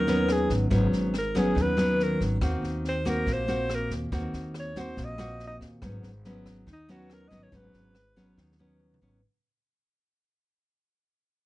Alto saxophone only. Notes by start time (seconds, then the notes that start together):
Already playing: A#4
0.33 G#4
1.19 A#4
1.38 G#4
1.62 B4
2.04 A#4
2.89 C5
3.10 A#4
3.33 C5
3.75 A#4
4.60 C#5
4.80 C5
5.05 D#5
5.47 D#5
6.73 D#4
6.91 F#4
7.14 A#4
7.28 D#5
7.43 C#5
7.57 B4